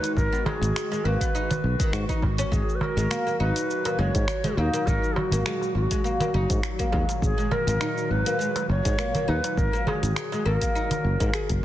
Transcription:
Already playing: ambient pad D#3 G#3 F#4, oud D#4, singing bowl F#4, native american-style wooden flute B4
0.03 closed hi-hat, darbuka ka, cabasa
0.15 fretless electric bass G#1, native american-style wooden flute A#4, kick, cabasa
0.32 oud B3, cabasa
0.45 oud G#3, native american-style wooden flute G#4, darbuka ka, darbuka tek, darbuka dum
0.61 fretless electric bass G#1, closed hi-hat, darbuka dum, cabasa
0.76 finger snap, cabasa
0.92 oud G#3, darbuka ka, cabasa
1.04 fretless electric bass G#1, oud A#3, native american-style wooden flute B4, darbuka tek
1.21 oud B3, kick, closed hi-hat, cabasa
1.35 oud D#4, cabasa
1.50 closed hi-hat, darbuka ka, darbuka dum, cabasa
1.64 fretless electric bass B1
1.80 oud D#3, kick, closed hi-hat, cabasa
1.93 fretless electric bass G#2, oud F#4, finger snap, cabasa
2.09 oud D#4, kick, closed hi-hat, cabasa
2.22 fretless electric bass G#1, kick, darbuka tek
2.38 oud C#4, closed hi-hat, darbuka ka, cabasa
2.52 fretless electric bass G#1, ambient pad A#2 F#3, oud G#3, native american-style wooden flute G#4, kick, cabasa
2.69 cabasa
2.75 native american-style wooden flute B4
2.81 native american-style wooden flute A#4, darbuka tek, darbuka dum
2.97 fretless electric bass G#1, oud G#3, closed hi-hat, darbuka dum, cabasa
3.10 oud A#3, finger snap, cabasa
3.27 oud A#3, cabasa
3.40 fretless electric bass G#1, oud D#4, native american-style wooden flute B4
3.56 closed hi-hat, cabasa
3.70 cabasa
3.85 oud A#3, closed hi-hat, darbuka tek, cabasa
3.99 fretless electric bass F#1, oud G#3, native american-style wooden flute C#5, darbuka ka
4.15 fretless electric bass G#2, kick, closed hi-hat, cabasa
4.28 finger snap, cabasa
4.44 oud G#3, closed hi-hat, darbuka dum, cabasa
4.57 fretless electric bass D#2, oud A#3, native american-style wooden flute D#4
4.74 oud A#3, closed hi-hat, darbuka ka, cabasa
4.87 fretless electric bass G#1, oud D#4, native american-style wooden flute A#4, kick, cabasa
5.04 cabasa
5.16 native american-style wooden flute F#4, darbuka ka, darbuka tek, darbuka dum
5.31 fretless electric bass G#1, oud A#3, closed hi-hat, darbuka dum, cabasa
5.46 oud G#3, finger snap, cabasa
5.61 darbuka ka, cabasa
5.75 fretless electric bass G#1, native american-style wooden flute F#4, darbuka tek
5.91 oud G#3, kick, closed hi-hat, cabasa
6.04 oud A#3, cabasa
6.20 oud A#3, closed hi-hat, darbuka ka, darbuka dum, cabasa
6.34 fretless electric bass F#1, oud D#4
6.50 fretless electric bass G#2, kick, closed hi-hat, cabasa
6.63 finger snap, cabasa
6.79 oud A#3, kick, closed hi-hat, cabasa
6.92 fretless electric bass D#2, oud G#3, kick, darbuka tek
7.09 closed hi-hat, darbuka ka, cabasa
7.22 fretless electric bass G#1, native american-style wooden flute G#4, kick, cabasa
7.38 oud G#3, cabasa
7.51 oud A#3, native american-style wooden flute A#4, darbuka tek, darbuka dum
7.67 fretless electric bass G#1, oud A#3, closed hi-hat, darbuka dum, cabasa
7.81 oud D#4, finger snap, cabasa
7.98 cabasa
8.11 fretless electric bass G#1, native american-style wooden flute B4
8.26 oud A#3, closed hi-hat, cabasa
8.39 oud G#3, cabasa
8.56 closed hi-hat, darbuka tek, cabasa
8.69 fretless electric bass F#1, native american-style wooden flute C#5, darbuka ka
8.85 fretless electric bass G#2, oud G#3, kick, closed hi-hat, cabasa
8.98 oud A#3, finger snap, cabasa
9.15 oud A#3, closed hi-hat, darbuka dum, cabasa
9.28 fretless electric bass D#2, oud D#4, native american-style wooden flute B4
9.44 closed hi-hat, darbuka ka, cabasa
9.57 fretless electric bass G#1, native american-style wooden flute A#4, kick, cabasa
9.73 oud A#3, cabasa
9.87 oud G#3, native american-style wooden flute G#4, darbuka ka, darbuka tek, darbuka dum
10.03 fretless electric bass G#1, closed hi-hat, darbuka dum, cabasa
10.16 finger snap, cabasa
10.32 oud G#3, darbuka ka, cabasa
10.45 fretless electric bass G#1, oud A#3, native american-style wooden flute A#4, darbuka tek
10.61 oud A#3, kick, closed hi-hat, cabasa
10.75 oud D#4, cabasa
10.91 closed hi-hat, darbuka ka, darbuka dum, cabasa
11.04 fretless electric bass F#1
11.20 fretless electric bass G#2, oud A#3, kick, closed hi-hat, cabasa
11.34 oud G#4, finger snap, cabasa
11.49 fretless electric bass F#1, kick, closed hi-hat, cabasa

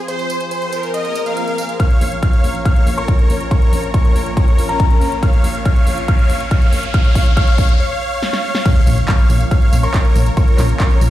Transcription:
Already playing: analog synth pad F3 C4 G#4 C5
0.08 supersaw synth C5, violin section C5, closed hi-hat, tambourine
0.19 closed hi-hat, tambourine
0.30 closed hi-hat, tambourine
0.40 closed hi-hat, tambourine
0.51 supersaw synth C5, closed hi-hat, tambourine
0.62 closed hi-hat, tambourine
0.73 violin section A#4, closed hi-hat, tambourine
0.83 closed hi-hat, tambourine
0.94 supersaw synth D#5, closed hi-hat, tambourine, swell
1.05 closed hi-hat, tambourine
1.15 closed hi-hat, tambourine
1.26 supersaw synth F5, closed hi-hat, tambourine
1.37 closed hi-hat, tambourine
1.48 closed hi-hat, tambourine
1.58 closed hi-hat, tambourine
1.69 closed hi-hat, tambourine
1.80 analog synth pad F3 A#3 C#4 A#4, supersaw synth C#5 F5, grand piano F6, kick, closed hi-hat, riser
1.91 closed hi-hat
2.01 fm bass A#1, open hi-hat
2.12 closed hi-hat
2.23 supersaw synth C#5 F5, grand piano F6, kick, closed hi-hat
2.33 closed hi-hat
2.44 fm bass A#1, open hi-hat
2.55 closed hi-hat
2.65 supersaw synth C#5 F5, grand piano F6, kick, closed hi-hat
2.76 closed hi-hat
2.87 fm bass A#1, open hi-hat
2.98 supersaw synth A#4 C#5, grand piano C#6, closed hi-hat
3.08 kick, closed hi-hat
3.19 closed hi-hat
3.30 fm bass A#1, open hi-hat
3.41 closed hi-hat
3.51 supersaw synth A#4 C#5, grand piano C#6, kick, closed hi-hat
3.62 closed hi-hat
3.72 fm bass A#1, open hi-hat
3.84 closed hi-hat
3.94 supersaw synth A#4 C#5, grand piano C#6, kick, closed hi-hat
4.05 closed hi-hat
4.15 fm bass A#1, open hi-hat
4.26 closed hi-hat
4.37 supersaw synth A#4 C#5, grand piano C#6, kick, closed hi-hat
4.48 closed hi-hat
4.58 fm bass A#1, open hi-hat
4.69 supersaw synth C#4 A#4, grand piano A#5, closed hi-hat
4.80 kick, closed hi-hat
4.91 closed hi-hat
5.01 fm bass A#1, open hi-hat
5.12 closed hi-hat
5.23 supersaw synth C#5 F5, analog synth pad C#5, grand piano F6, kick, closed hi-hat
5.33 closed hi-hat
5.44 fm bass A#1, open hi-hat
5.55 closed hi-hat
5.65 supersaw synth C#5 F5, grand piano F6, kick, closed hi-hat
5.76 closed hi-hat
5.87 fm bass A#1, open hi-hat
5.98 closed hi-hat
6.08 supersaw synth C#5 F5, grand piano F6, kick, closed hi-hat
6.19 closed hi-hat
6.30 fm bass A#1, open hi-hat
6.40 closed hi-hat
6.51 supersaw synth C#5 F5, grand piano F6, kick, closed hi-hat
6.62 closed hi-hat
6.73 fm bass A#1, open hi-hat
6.83 closed hi-hat
6.94 supersaw synth C#5 F5, grand piano F6, kick, closed hi-hat
7.05 closed hi-hat
7.15 fm bass A#1, kick, open hi-hat
7.26 closed hi-hat
7.37 supersaw synth C#5 F5, grand piano F6, kick, closed hi-hat
7.48 closed hi-hat
7.58 fm bass A#1, kick, open hi-hat
7.69 closed hi-hat
7.80 supersaw synth C#5 F5
8.01 supersaw synth C#5 F5
8.23 supersaw synth C#5 F5, snare
8.33 snare
8.44 supersaw synth C#5 F5
8.55 snare
8.65 analog synth pad C#3 F3 A#3 F4, supersaw synth C#5 F5, grand piano F6, kick, closed hi-hat, crash, tambourine, impact
8.76 closed hi-hat, tambourine
8.87 fm bass A#1, open hi-hat, tambourine
8.98 closed hi-hat, tambourine
9.08 supersaw synth C#5 F5, grand piano F6, kick, clap, closed hi-hat, tambourine
9.19 closed hi-hat, tambourine
9.30 fm bass A#1, open hi-hat, tambourine
9.41 closed hi-hat, tambourine
9.51 supersaw synth C#5 F5, grand piano F6, kick, closed hi-hat, tambourine
9.62 closed hi-hat, tambourine
9.73 fm bass A#1, open hi-hat, tambourine
9.83 supersaw synth A#4 C#5, grand piano C#6, closed hi-hat, tambourine
9.94 kick, clap, closed hi-hat, tambourine
10.05 closed hi-hat, tambourine
10.16 fm bass A#1, open hi-hat, tambourine
10.26 closed hi-hat, tambourine
10.37 supersaw synth A#4 C#5, grand piano C#6, kick, closed hi-hat, tambourine
10.48 closed hi-hat, tambourine
10.58 fm bass A#1, clap, open hi-hat, tambourine
10.69 closed hi-hat, tambourine
10.80 supersaw synth A#4 C#5, grand piano C#6, kick, clap, closed hi-hat, tambourine
10.91 closed hi-hat, tambourine
11.01 fm bass A#1, open hi-hat, tambourine

